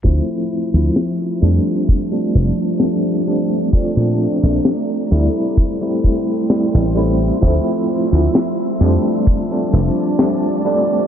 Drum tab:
HH |x---xxxxxxxxxxxx|xx-xxxxxxxxxxxxx|xx-xxxxxxxxxxxxx|
SD |----o-------o---|----o-------o---|----o-------o---|
BD |o-------o-------|o-------o-o-----|o-------o-------|